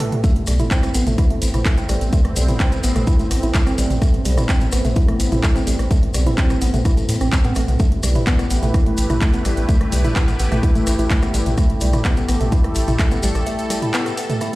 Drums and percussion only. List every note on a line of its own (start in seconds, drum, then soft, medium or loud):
0.00 cross-stick soft
0.00 mid tom medium
0.00 open hi-hat loud
0.12 closed hi-hat soft
0.12 mid tom medium
0.24 kick loud
0.24 closed hi-hat medium
0.24 maracas medium
0.36 closed hi-hat soft
0.47 cross-stick soft
0.47 open hi-hat loud
0.47 maracas loud
0.59 closed hi-hat soft
0.59 mid tom medium
0.59 maracas soft
0.71 kick loud
0.71 clap loud
0.71 closed hi-hat medium
0.71 maracas medium
0.83 cross-stick medium
0.83 closed hi-hat soft
0.83 maracas soft
0.94 open hi-hat loud
0.94 maracas loud
1.07 closed hi-hat soft
1.07 mid tom medium
1.07 maracas soft
1.18 kick loud
1.18 cross-stick medium
1.18 closed hi-hat medium
1.18 maracas medium
1.30 closed hi-hat soft
1.42 open hi-hat loud
1.42 maracas medium
1.54 cross-stick medium
1.54 closed hi-hat soft
1.54 mid tom medium
1.54 maracas soft
1.65 kick loud
1.65 clap loud
1.65 closed hi-hat medium
1.65 maracas medium
1.77 closed hi-hat soft
1.77 maracas soft
1.89 cross-stick medium
1.89 open hi-hat loud
1.89 maracas medium
2.01 closed hi-hat soft
2.01 maracas soft
2.13 kick loud
2.13 closed hi-hat medium
2.13 maracas soft
2.25 cross-stick medium
2.25 closed hi-hat soft
2.36 open hi-hat loud
2.36 maracas loud
2.49 closed hi-hat soft
2.49 mid tom medium
2.49 maracas soft
2.60 kick loud
2.60 cross-stick medium
2.60 clap loud
2.60 closed hi-hat medium
2.60 maracas medium
2.72 closed hi-hat soft
2.72 maracas soft
2.83 open hi-hat loud
2.83 maracas loud
2.95 cross-stick medium
2.95 closed hi-hat soft
2.95 mid tom medium
2.95 maracas soft
3.07 kick loud
3.07 closed hi-hat medium
3.07 maracas medium
3.19 closed hi-hat soft
3.19 maracas soft
3.31 cross-stick medium
3.31 open hi-hat loud
3.31 maracas medium
3.43 closed hi-hat soft
3.43 maracas soft
3.54 kick loud
3.54 clap loud
3.54 closed hi-hat medium
3.54 maracas medium
3.67 cross-stick medium
3.67 closed hi-hat soft
3.67 maracas soft
3.78 open hi-hat loud
3.78 maracas loud
3.90 closed hi-hat soft
3.90 mid tom medium
3.90 maracas soft
4.02 kick loud
4.02 cross-stick medium
4.02 closed hi-hat medium
4.02 maracas medium
4.14 closed hi-hat soft
4.25 open hi-hat loud
4.25 maracas medium
4.38 cross-stick medium
4.38 closed hi-hat soft
4.38 mid tom medium
4.38 maracas soft
4.49 kick loud
4.49 clap loud
4.49 closed hi-hat medium
4.49 maracas medium
4.61 closed hi-hat soft
4.61 maracas soft
4.72 cross-stick medium
4.72 open hi-hat loud
4.72 maracas loud
4.85 closed hi-hat soft
4.85 mid tom medium
4.85 maracas soft
4.96 kick loud
4.96 closed hi-hat medium
4.96 maracas medium
5.08 cross-stick medium
5.08 closed hi-hat soft
5.20 open hi-hat loud
5.20 maracas loud
5.32 closed hi-hat soft
5.32 mid tom medium
5.32 maracas soft
5.43 kick loud
5.43 cross-stick medium
5.43 clap loud
5.43 closed hi-hat medium
5.43 maracas medium
5.56 closed hi-hat soft
5.56 maracas soft
5.67 open hi-hat loud
5.67 maracas medium
5.79 cross-stick medium
5.79 closed hi-hat soft
5.79 maracas soft
5.91 kick loud
5.91 closed hi-hat medium
5.91 maracas medium
6.03 closed hi-hat soft
6.14 cross-stick medium
6.14 open hi-hat loud
6.14 maracas loud
6.26 closed hi-hat soft
6.26 mid tom medium
6.26 maracas soft
6.38 kick loud
6.38 clap loud
6.38 closed hi-hat medium
6.38 maracas medium
6.50 cross-stick medium
6.50 closed hi-hat soft
6.50 maracas soft
6.61 open hi-hat loud
6.61 maracas loud
6.74 closed hi-hat soft
6.74 mid tom loud
6.74 maracas soft
6.85 kick loud
6.85 cross-stick medium
6.85 closed hi-hat medium
6.85 maracas medium
6.97 closed hi-hat soft
6.97 maracas soft
7.09 open hi-hat loud
7.09 maracas loud
7.21 cross-stick medium
7.21 closed hi-hat soft
7.21 maracas soft
7.32 kick loud
7.32 clap loud
7.32 closed hi-hat medium
7.32 maracas medium
7.44 closed hi-hat soft
7.44 maracas soft
7.55 cross-stick medium
7.55 open hi-hat loud
7.55 maracas medium
7.68 closed hi-hat soft
7.68 mid tom medium
7.68 maracas soft
7.79 kick loud
7.79 closed hi-hat medium
7.79 maracas soft
7.92 closed hi-hat soft
8.03 cross-stick medium
8.03 open hi-hat loud
8.03 maracas medium
8.15 closed hi-hat soft
8.15 mid tom loud
8.15 maracas soft
8.26 kick loud
8.26 clap loud
8.26 closed hi-hat medium
8.26 maracas medium
8.39 cross-stick medium
8.39 closed hi-hat soft
8.39 maracas soft
8.51 open hi-hat loud
8.51 maracas medium
8.63 closed hi-hat soft
8.63 mid tom loud
8.63 maracas soft
8.74 kick loud
8.74 cross-stick medium
8.74 closed hi-hat medium
8.74 maracas medium
8.86 closed hi-hat soft
8.98 open hi-hat loud
8.98 maracas loud
9.10 cross-stick medium
9.10 closed hi-hat soft
9.10 mid tom loud
9.10 maracas soft
9.21 kick loud
9.21 clap loud
9.21 closed hi-hat medium
9.21 maracas medium
9.33 closed hi-hat soft
9.33 maracas soft
9.45 cross-stick medium
9.45 open hi-hat loud
9.45 maracas medium
9.57 closed hi-hat soft
9.57 maracas soft
9.69 kick loud
9.69 closed hi-hat medium
9.69 maracas soft
9.81 cross-stick medium
9.81 closed hi-hat soft
9.92 open hi-hat loud
9.92 maracas loud
10.04 closed hi-hat soft
10.04 mid tom loud
10.04 maracas soft
10.15 kick loud
10.15 cross-stick medium
10.15 clap loud
10.15 closed hi-hat medium
10.15 maracas medium
10.28 closed hi-hat soft
10.28 maracas soft
10.39 open hi-hat loud
10.39 maracas medium
10.52 cross-stick medium
10.52 closed hi-hat soft
10.52 mid tom loud
10.52 maracas soft
10.63 kick loud
10.63 closed hi-hat medium
10.63 maracas medium
10.75 closed hi-hat soft
10.75 maracas soft
10.87 cross-stick medium
10.87 open hi-hat loud
10.87 maracas loud
10.99 closed hi-hat soft
10.99 maracas soft
11.10 kick loud
11.10 clap loud
11.10 closed hi-hat medium
11.10 maracas medium
11.22 cross-stick medium
11.22 closed hi-hat soft
11.22 maracas soft
11.34 open hi-hat loud
11.34 maracas medium
11.46 closed hi-hat soft
11.46 mid tom medium
11.46 maracas soft
11.58 kick loud
11.58 cross-stick medium
11.58 closed hi-hat medium
11.58 maracas medium
11.70 closed hi-hat soft
11.81 open hi-hat loud
11.81 maracas medium
11.93 cross-stick medium
11.93 closed hi-hat soft
11.93 mid tom loud
11.93 maracas soft
12.05 kick loud
12.05 clap loud
12.05 closed hi-hat medium
12.05 maracas medium
12.17 closed hi-hat soft
12.17 maracas soft
12.29 cross-stick medium
12.29 open hi-hat loud
12.29 maracas medium
12.40 closed hi-hat soft
12.40 mid tom loud
12.40 maracas soft
12.52 kick loud
12.52 closed hi-hat medium
12.52 maracas medium
12.64 cross-stick soft
12.64 closed hi-hat soft
12.75 open hi-hat loud
12.75 maracas medium
12.88 closed hi-hat soft
12.88 mid tom loud
12.88 maracas soft
12.99 kick loud
12.99 cross-stick medium
12.99 clap loud
12.99 closed hi-hat medium
12.99 maracas soft
13.11 closed hi-hat soft
13.11 maracas soft
13.23 open hi-hat loud
13.23 maracas medium
13.35 cross-stick medium
13.35 closed hi-hat soft
13.35 maracas soft
13.46 closed hi-hat medium
13.46 maracas soft
13.59 closed hi-hat soft
13.59 maracas soft
13.70 cross-stick medium
13.70 open hi-hat loud
13.70 maracas loud
13.82 closed hi-hat soft
13.82 mid tom medium
13.82 maracas soft
13.94 clap loud
13.94 closed hi-hat medium
13.94 maracas medium
14.06 cross-stick soft
14.06 closed hi-hat soft
14.06 maracas soft
14.18 open hi-hat loud
14.18 maracas medium
14.30 closed hi-hat soft
14.30 mid tom medium
14.30 maracas soft
14.41 cross-stick medium
14.41 closed hi-hat medium
14.41 maracas medium